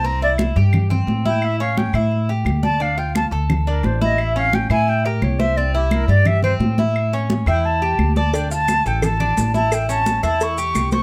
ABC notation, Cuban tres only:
X:1
M:4/4
L:1/8
Q:1/4=174
K:Aphr
V:1 name="Cuban tres"
C E2 G2 C2 E- | E ^C2 E2 G2 d | D F2 A2 D2 E- | E ^C2 E2 G2 =c |
C E2 G2 C2 E- | E ^C2 E2 G2 d | D F2 A2 D2 E- | E ^C2 E2 G2 =c |]